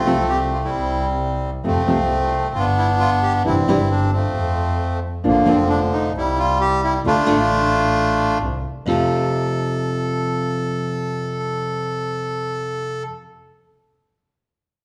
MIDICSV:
0, 0, Header, 1, 4, 480
1, 0, Start_track
1, 0, Key_signature, -1, "major"
1, 0, Tempo, 451467
1, 1756, Time_signature, 4, 2, 24, 8
1, 15781, End_track
2, 0, Start_track
2, 0, Title_t, "Bandoneon"
2, 0, Program_c, 0, 23
2, 0, Note_on_c, 0, 57, 70
2, 0, Note_on_c, 0, 60, 75
2, 67, Note_on_c, 0, 69, 97
2, 290, Note_off_c, 0, 69, 0
2, 311, Note_on_c, 0, 67, 92
2, 419, Note_off_c, 0, 67, 0
2, 565, Note_on_c, 0, 65, 78
2, 616, Note_off_c, 0, 65, 0
2, 665, Note_off_c, 0, 60, 0
2, 680, Note_on_c, 0, 55, 63
2, 680, Note_on_c, 0, 60, 59
2, 689, Note_on_c, 0, 64, 75
2, 753, Note_off_c, 0, 57, 0
2, 1130, Note_off_c, 0, 64, 0
2, 1599, Note_off_c, 0, 55, 0
2, 1600, Note_off_c, 0, 60, 0
2, 1768, Note_on_c, 0, 60, 89
2, 1773, Note_on_c, 0, 57, 69
2, 1776, Note_on_c, 0, 53, 63
2, 2684, Note_off_c, 0, 57, 0
2, 2685, Note_off_c, 0, 53, 0
2, 2712, Note_on_c, 0, 65, 98
2, 2741, Note_on_c, 0, 59, 74
2, 2741, Note_on_c, 0, 62, 69
2, 2753, Note_off_c, 0, 60, 0
2, 2821, Note_off_c, 0, 65, 0
2, 2957, Note_on_c, 0, 64, 98
2, 3064, Note_off_c, 0, 64, 0
2, 3188, Note_on_c, 0, 65, 111
2, 3297, Note_off_c, 0, 65, 0
2, 3430, Note_on_c, 0, 67, 106
2, 3539, Note_off_c, 0, 67, 0
2, 3643, Note_off_c, 0, 59, 0
2, 3644, Note_off_c, 0, 62, 0
2, 3673, Note_on_c, 0, 64, 106
2, 3708, Note_on_c, 0, 60, 73
2, 3781, Note_off_c, 0, 64, 0
2, 3915, Note_on_c, 0, 64, 103
2, 4136, Note_off_c, 0, 64, 0
2, 4158, Note_on_c, 0, 62, 92
2, 4366, Note_off_c, 0, 60, 0
2, 4375, Note_off_c, 0, 62, 0
2, 4381, Note_on_c, 0, 60, 84
2, 4417, Note_on_c, 0, 57, 65
2, 4421, Note_on_c, 0, 53, 64
2, 5293, Note_off_c, 0, 60, 0
2, 5311, Note_off_c, 0, 57, 0
2, 5313, Note_off_c, 0, 53, 0
2, 5603, Note_on_c, 0, 50, 73
2, 5604, Note_on_c, 0, 53, 65
2, 5604, Note_on_c, 0, 58, 92
2, 5828, Note_on_c, 0, 60, 95
2, 5835, Note_off_c, 0, 58, 0
2, 6043, Note_off_c, 0, 60, 0
2, 6054, Note_on_c, 0, 62, 99
2, 6161, Note_off_c, 0, 62, 0
2, 6302, Note_on_c, 0, 63, 92
2, 6500, Note_off_c, 0, 50, 0
2, 6501, Note_off_c, 0, 53, 0
2, 6519, Note_off_c, 0, 63, 0
2, 6561, Note_on_c, 0, 55, 79
2, 6561, Note_on_c, 0, 64, 100
2, 6790, Note_on_c, 0, 65, 108
2, 6791, Note_off_c, 0, 64, 0
2, 7004, Note_off_c, 0, 65, 0
2, 7026, Note_on_c, 0, 67, 118
2, 7242, Note_off_c, 0, 67, 0
2, 7274, Note_on_c, 0, 64, 108
2, 7377, Note_off_c, 0, 64, 0
2, 7463, Note_off_c, 0, 55, 0
2, 7511, Note_on_c, 0, 57, 72
2, 7514, Note_on_c, 0, 65, 108
2, 7516, Note_on_c, 0, 62, 67
2, 8909, Note_off_c, 0, 57, 0
2, 8911, Note_off_c, 0, 65, 0
2, 8912, Note_off_c, 0, 62, 0
2, 9444, Note_on_c, 0, 69, 95
2, 13857, Note_off_c, 0, 69, 0
2, 15781, End_track
3, 0, Start_track
3, 0, Title_t, "Nylon-string guitar"
3, 0, Program_c, 1, 24
3, 62, Note_on_c, 1, 48, 84
3, 70, Note_on_c, 1, 53, 81
3, 75, Note_on_c, 1, 57, 83
3, 76, Note_on_c, 1, 65, 109
3, 79, Note_on_c, 1, 60, 96
3, 159, Note_off_c, 1, 48, 0
3, 163, Note_off_c, 1, 53, 0
3, 165, Note_off_c, 1, 57, 0
3, 165, Note_off_c, 1, 65, 0
3, 167, Note_off_c, 1, 60, 0
3, 1740, Note_on_c, 1, 53, 67
3, 1746, Note_on_c, 1, 48, 65
3, 1751, Note_on_c, 1, 57, 73
3, 1751, Note_on_c, 1, 60, 74
3, 1753, Note_on_c, 1, 65, 78
3, 1927, Note_off_c, 1, 53, 0
3, 1930, Note_off_c, 1, 48, 0
3, 1933, Note_off_c, 1, 57, 0
3, 1933, Note_off_c, 1, 60, 0
3, 1934, Note_off_c, 1, 65, 0
3, 1994, Note_on_c, 1, 53, 90
3, 1997, Note_on_c, 1, 48, 82
3, 1997, Note_on_c, 1, 57, 83
3, 2001, Note_on_c, 1, 60, 94
3, 2002, Note_on_c, 1, 65, 93
3, 2090, Note_off_c, 1, 53, 0
3, 2092, Note_off_c, 1, 48, 0
3, 2092, Note_off_c, 1, 57, 0
3, 2094, Note_off_c, 1, 60, 0
3, 2094, Note_off_c, 1, 65, 0
3, 3663, Note_on_c, 1, 48, 67
3, 3664, Note_on_c, 1, 52, 67
3, 3670, Note_on_c, 1, 62, 74
3, 3671, Note_on_c, 1, 55, 67
3, 3673, Note_on_c, 1, 64, 78
3, 3847, Note_off_c, 1, 48, 0
3, 3848, Note_off_c, 1, 52, 0
3, 3851, Note_off_c, 1, 55, 0
3, 3851, Note_off_c, 1, 62, 0
3, 3852, Note_off_c, 1, 64, 0
3, 3911, Note_on_c, 1, 48, 98
3, 3916, Note_on_c, 1, 52, 85
3, 3919, Note_on_c, 1, 55, 96
3, 3919, Note_on_c, 1, 62, 104
3, 3919, Note_on_c, 1, 64, 100
3, 4006, Note_off_c, 1, 48, 0
3, 4009, Note_off_c, 1, 52, 0
3, 4010, Note_off_c, 1, 62, 0
3, 4010, Note_off_c, 1, 64, 0
3, 4011, Note_off_c, 1, 55, 0
3, 5568, Note_on_c, 1, 53, 69
3, 5569, Note_on_c, 1, 58, 79
3, 5573, Note_on_c, 1, 62, 79
3, 5581, Note_on_c, 1, 65, 85
3, 5751, Note_off_c, 1, 53, 0
3, 5751, Note_off_c, 1, 58, 0
3, 5753, Note_off_c, 1, 62, 0
3, 5757, Note_off_c, 1, 65, 0
3, 5795, Note_on_c, 1, 53, 96
3, 5808, Note_on_c, 1, 58, 103
3, 5809, Note_on_c, 1, 62, 108
3, 5809, Note_on_c, 1, 65, 106
3, 5899, Note_off_c, 1, 53, 0
3, 5906, Note_off_c, 1, 58, 0
3, 5906, Note_off_c, 1, 62, 0
3, 5907, Note_off_c, 1, 65, 0
3, 7489, Note_on_c, 1, 50, 66
3, 7499, Note_on_c, 1, 57, 71
3, 7502, Note_on_c, 1, 65, 83
3, 7506, Note_on_c, 1, 62, 77
3, 7669, Note_off_c, 1, 50, 0
3, 7674, Note_off_c, 1, 57, 0
3, 7676, Note_off_c, 1, 65, 0
3, 7678, Note_off_c, 1, 62, 0
3, 7721, Note_on_c, 1, 57, 90
3, 7723, Note_on_c, 1, 50, 76
3, 7725, Note_on_c, 1, 62, 100
3, 7731, Note_on_c, 1, 65, 99
3, 7821, Note_off_c, 1, 57, 0
3, 7822, Note_off_c, 1, 50, 0
3, 7823, Note_off_c, 1, 62, 0
3, 7826, Note_off_c, 1, 65, 0
3, 9416, Note_on_c, 1, 41, 81
3, 9430, Note_on_c, 1, 48, 87
3, 9431, Note_on_c, 1, 53, 77
3, 9438, Note_on_c, 1, 57, 90
3, 9439, Note_on_c, 1, 60, 83
3, 9447, Note_on_c, 1, 65, 81
3, 13871, Note_off_c, 1, 41, 0
3, 13885, Note_off_c, 1, 48, 0
3, 13886, Note_off_c, 1, 53, 0
3, 13893, Note_off_c, 1, 57, 0
3, 13894, Note_off_c, 1, 60, 0
3, 13902, Note_off_c, 1, 65, 0
3, 15781, End_track
4, 0, Start_track
4, 0, Title_t, "Double bass"
4, 0, Program_c, 2, 43
4, 77, Note_on_c, 2, 36, 103
4, 760, Note_off_c, 2, 36, 0
4, 796, Note_on_c, 2, 36, 112
4, 1712, Note_off_c, 2, 36, 0
4, 1766, Note_on_c, 2, 41, 62
4, 1963, Note_off_c, 2, 41, 0
4, 2010, Note_on_c, 2, 36, 102
4, 2689, Note_off_c, 2, 36, 0
4, 2722, Note_on_c, 2, 31, 108
4, 3629, Note_off_c, 2, 31, 0
4, 3687, Note_on_c, 2, 31, 71
4, 3881, Note_off_c, 2, 31, 0
4, 3918, Note_on_c, 2, 31, 116
4, 4593, Note_off_c, 2, 31, 0
4, 4629, Note_on_c, 2, 41, 110
4, 5531, Note_off_c, 2, 41, 0
4, 5588, Note_on_c, 2, 34, 69
4, 5782, Note_off_c, 2, 34, 0
4, 5808, Note_on_c, 2, 29, 107
4, 6490, Note_off_c, 2, 29, 0
4, 6538, Note_on_c, 2, 36, 110
4, 7446, Note_off_c, 2, 36, 0
4, 7485, Note_on_c, 2, 38, 65
4, 7689, Note_off_c, 2, 38, 0
4, 7720, Note_on_c, 2, 33, 106
4, 8875, Note_off_c, 2, 33, 0
4, 8937, Note_on_c, 2, 36, 103
4, 9144, Note_off_c, 2, 36, 0
4, 9429, Note_on_c, 2, 41, 60
4, 9629, Note_off_c, 2, 41, 0
4, 15781, End_track
0, 0, End_of_file